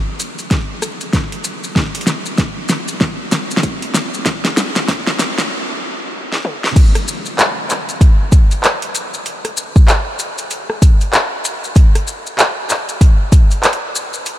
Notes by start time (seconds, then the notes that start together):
0.20 closed hi-hat, maracas
0.39 closed hi-hat, maracas
0.50 kick, snare, closed hi-hat, maracas
0.82 cross-stick, closed hi-hat, maracas
1.01 closed hi-hat, maracas
1.13 kick, snare, closed hi-hat, maracas
1.32 closed hi-hat
1.44 closed hi-hat, maracas
1.64 maracas
1.76 kick, snare, maracas
1.95 closed hi-hat
2.01 closed hi-hat
2.07 snare, maracas
2.26 maracas
2.38 kick, snare, closed hi-hat, maracas
2.69 snare, closed hi-hat, maracas
2.88 closed hi-hat, maracas
3.00 kick, snare, maracas
3.32 snare, closed hi-hat, maracas
3.51 closed hi-hat, maracas
3.57 snare
3.63 kick, closed hi-hat, maracas
3.82 closed hi-hat
3.94 snare, closed hi-hat, maracas
4.14 maracas
4.26 kick, snare, closed hi-hat, maracas
4.45 snare, closed hi-hat
4.57 snare, maracas
4.76 snare, maracas
4.88 kick, snare, closed hi-hat, maracas
5.07 snare
5.19 snare, closed hi-hat, maracas
5.38 snare, closed hi-hat, maracas
6.32 snare
6.45 mid tom
6.64 snare
6.76 kick, closed hi-hat, crash, maracas
6.95 cross-stick, closed hi-hat
7.08 maracas
7.26 maracas
7.39 clap, closed hi-hat, maracas
7.70 clap, closed hi-hat, maracas
7.89 closed hi-hat, maracas
8.01 kick, closed hi-hat, maracas
8.32 kick, closed hi-hat, maracas
8.51 closed hi-hat, maracas
8.64 clap, closed hi-hat, maracas
8.82 closed hi-hat
8.95 closed hi-hat, maracas
9.14 maracas
9.26 closed hi-hat, maracas
9.45 cross-stick, closed hi-hat
9.57 maracas
9.76 kick, maracas
9.88 clap, closed hi-hat, maracas
10.19 closed hi-hat, maracas
10.38 closed hi-hat, maracas
10.51 closed hi-hat, maracas
10.70 cross-stick
10.82 kick, closed hi-hat, maracas
11.01 closed hi-hat, maracas
11.13 clap, closed hi-hat, maracas
11.45 closed hi-hat, maracas
11.64 maracas
11.75 kick, closed hi-hat, maracas
11.95 cross-stick, closed hi-hat
12.08 maracas
12.26 maracas
12.39 clap, closed hi-hat, maracas
12.69 clap, closed hi-hat, maracas
12.89 closed hi-hat, maracas
13.01 kick, closed hi-hat, maracas
13.32 kick, closed hi-hat, maracas
13.51 closed hi-hat, maracas
13.63 clap, closed hi-hat, maracas
13.73 closed hi-hat
13.95 maracas
14.14 maracas
14.26 closed hi-hat, maracas